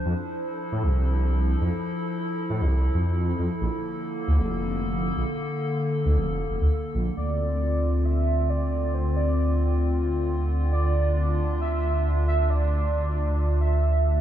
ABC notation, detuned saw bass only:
X:1
M:4/4
L:1/16
Q:1/4=135
K:Dm
V:1 name="Detuned saw bass" clef=bass
F,, z4 z A,, C,,6 z F,, z | z6 A,, C,,2 z F,,3 z F,, z | B,,, z4 z D,, F,,,6 z B,,, z | z6 D,, F,,,2 z F,,, D,, z2 B,,, z |
D,,16- | D,,16- | D,,16- | D,,16 |]